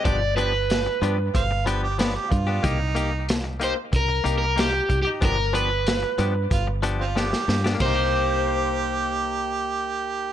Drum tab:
CC |----------------|----------------|----------------|x---------------|
HH |x-x-x-x-x-x-x-x-|x-x-x-x-x-x-x-x-|x-x-x-x-x-x-----|----------------|
SD |----o-------o---|----o-------o---|----o-------oooo|----------------|
BD |o-------o-----o-|o-------o-----o-|o-------o-------|o---------------|